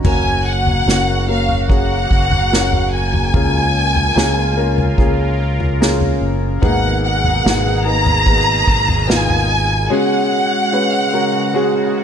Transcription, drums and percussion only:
0.05 kick medium
0.05 floor tom loud
0.05 splash medium
0.67 floor tom medium
0.89 snare medium
1.49 floor tom medium
1.70 kick medium
2.11 kick medium
2.31 floor tom medium
2.53 snare medium
2.73 floor tom medium
3.13 floor tom medium
3.34 kick medium
3.34 floor tom medium
3.96 floor tom medium
4.18 snare loud
4.78 floor tom medium
4.98 kick medium
5.60 floor tom medium
5.82 snare medium
6.01 floor tom medium
6.63 kick medium
6.63 floor tom loud
7.25 floor tom medium
7.46 snare loud
8.06 floor tom medium
8.27 kick medium
8.68 kick medium
8.88 floor tom medium
9.10 snare medium
9.29 floor tom medium

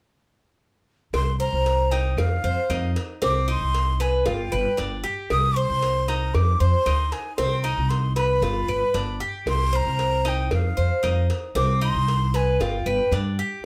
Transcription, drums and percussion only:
1.14 cowbell loud
1.14 claves medium
1.66 cowbell medium
1.92 cowbell medium
2.18 cowbell loud
2.18 claves medium
2.70 cowbell medium
2.70 claves medium
2.96 cowbell medium
3.22 cowbell loud
3.48 claves medium
3.75 cowbell medium
4.00 cowbell medium
4.26 cowbell loud
4.52 claves medium
4.78 cowbell medium
5.30 cowbell loud
5.30 claves medium
5.82 cowbell medium
6.08 cowbell medium
6.35 cowbell loud
6.35 claves medium
6.86 cowbell medium
6.86 claves medium
7.12 cowbell medium
7.38 cowbell loud
7.65 claves medium
7.90 cowbell medium
8.16 cowbell medium
8.43 cowbell loud
8.69 claves medium
8.94 cowbell medium
9.47 cowbell loud
9.47 claves medium
9.99 cowbell medium
10.25 cowbell medium
10.51 cowbell loud
10.51 claves medium
11.04 cowbell medium
11.04 claves medium
11.30 cowbell medium
11.56 cowbell loud
11.82 claves medium
12.08 cowbell medium
12.35 cowbell medium
12.61 cowbell loud
12.86 claves medium
13.13 cowbell medium

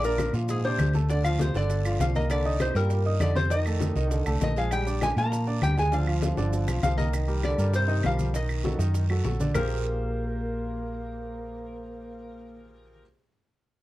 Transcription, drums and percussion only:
0.03 high conga soft
0.03 maracas medium
0.18 high bongo medium
0.18 high conga medium
0.18 short guiro medium
0.18 claves medium
0.18 maracas medium
0.34 high conga soft
0.34 short guiro medium
0.34 maracas soft
0.48 high bongo medium
0.48 high conga soft
0.48 long guiro medium
0.48 maracas medium
0.79 high bongo medium
0.79 low bongo medium
0.79 high conga medium
0.79 short guiro medium
0.79 claves medium
0.79 maracas medium
0.94 high conga medium
0.94 short guiro medium
0.94 maracas soft
1.09 high bongo medium
1.09 high conga soft
1.09 long guiro medium
1.09 maracas medium
1.25 high bongo soft
1.25 claves medium
1.25 maracas medium
1.39 high bongo medium
1.39 high conga medium
1.39 short guiro medium
1.39 maracas medium
1.54 high bongo soft
1.54 high conga soft
1.54 short guiro medium
1.54 maracas soft
1.70 high bongo medium
1.70 high conga soft
1.70 long guiro medium
1.70 maracas medium
1.85 high conga soft
1.85 claves medium
1.85 maracas medium
2.00 high bongo medium
2.00 low bongo medium
2.00 high conga medium
2.00 short guiro medium
2.00 maracas medium
2.15 high bongo soft
2.15 high conga medium
2.15 short guiro medium
2.15 maracas soft
2.30 high bongo medium
2.30 high conga soft
2.30 long guiro medium
2.30 claves medium
2.30 maracas medium
2.46 high conga soft
2.60 high bongo medium
2.60 high conga medium
2.60 short guiro medium
2.60 claves medium
2.60 maracas medium
2.75 short guiro medium
2.75 maracas soft
2.90 high bongo medium
2.90 high conga soft
2.90 long guiro medium
2.90 maracas medium
3.06 high conga soft
3.20 high bongo medium
3.20 low bongo medium
3.20 high conga medium
3.20 short guiro medium
3.20 claves medium
3.20 maracas medium
3.35 high conga medium
3.35 short guiro medium
3.35 maracas soft
3.50 high bongo medium
3.50 high conga soft
3.50 long guiro medium
3.50 maracas medium
3.66 high bongo soft
3.66 high conga soft
3.66 claves medium
3.66 maracas medium
3.80 high bongo medium
3.80 high conga medium
3.80 short guiro medium
3.80 maracas medium
3.96 high bongo soft
3.96 high conga soft
3.96 short guiro medium
3.96 maracas soft
4.11 high bongo medium
4.11 high conga soft
4.11 long guiro medium
4.11 maracas medium
4.26 high conga soft
4.26 claves medium
4.26 maracas medium
4.41 high bongo medium
4.41 low bongo medium
4.41 high conga medium
4.41 short guiro medium
4.41 maracas medium
4.56 high bongo soft
4.56 short guiro medium
4.56 maracas soft
4.71 high bongo medium
4.71 high conga soft
4.71 long guiro medium
4.71 claves medium
4.71 maracas medium
4.87 high conga soft
4.87 maracas medium
5.01 high bongo medium
5.01 high conga medium
5.01 short guiro medium
5.01 claves medium
5.01 maracas medium
5.17 high conga soft
5.17 short guiro medium
5.17 maracas soft
5.32 high bongo medium
5.32 high conga soft
5.32 long guiro medium
5.32 maracas medium
5.47 high conga soft
5.62 high bongo medium
5.62 low bongo medium
5.62 high conga medium
5.62 short guiro medium
5.62 claves medium
5.62 maracas medium
5.77 high conga medium
5.77 short guiro medium
5.77 maracas soft
5.92 high bongo medium
5.92 high conga soft
5.92 long guiro medium
5.92 maracas medium
6.07 high bongo soft
6.07 high conga soft
6.07 claves medium
6.22 high bongo medium
6.22 high conga medium
6.22 short guiro medium
6.22 maracas medium
6.37 low bongo medium
6.37 high conga soft
6.37 short guiro medium
6.37 maracas soft
6.53 high bongo medium
6.53 long guiro medium
6.53 maracas medium
6.68 low bongo medium
6.68 high conga soft
6.68 claves medium
6.68 maracas medium
6.83 low bongo loud
6.83 high conga medium
6.83 short guiro medium
6.83 maracas medium
6.98 low bongo medium
6.98 high conga medium
6.98 short guiro medium
6.98 maracas soft
7.13 high bongo medium
7.13 high conga soft
7.13 long guiro medium
7.13 claves medium
7.13 maracas medium
7.29 high bongo soft
7.29 high conga soft
7.29 maracas soft
7.43 high bongo medium
7.43 high conga medium
7.43 short guiro medium
7.43 claves medium
7.43 maracas soft
7.59 short guiro medium
7.59 maracas medium
7.74 high bongo medium
7.74 high conga soft
7.74 long guiro medium
7.74 maracas medium
7.89 high bongo soft
7.89 high conga soft
7.89 maracas soft
8.03 high bongo medium
8.03 low bongo medium
8.03 high conga medium
8.03 short guiro medium
8.03 claves medium
8.03 maracas soft
8.19 high bongo soft
8.19 high conga medium
8.19 short guiro medium
8.19 maracas medium
8.34 high bongo medium
8.34 high conga soft
8.34 long guiro medium
8.34 maracas medium
8.49 high bongo soft
8.49 high conga soft
8.49 claves medium
8.49 maracas soft
8.64 high bongo medium
8.64 high conga medium
8.64 short guiro medium
8.64 maracas soft
8.79 high conga soft
8.79 short guiro medium
8.79 maracas medium
8.94 high bongo medium
8.94 high conga soft
8.94 long guiro medium
8.94 maracas medium
9.10 high bongo soft
9.10 high conga soft
9.10 claves medium
9.10 maracas soft
9.25 high bongo medium
9.25 low bongo medium
9.25 high conga medium
9.25 short guiro medium
9.25 maracas soft
9.40 high conga medium
9.40 short guiro medium
9.40 maracas medium
9.55 low bongo medium
9.55 low conga medium
9.55 long guiro medium
9.55 claves medium
9.55 maracas medium

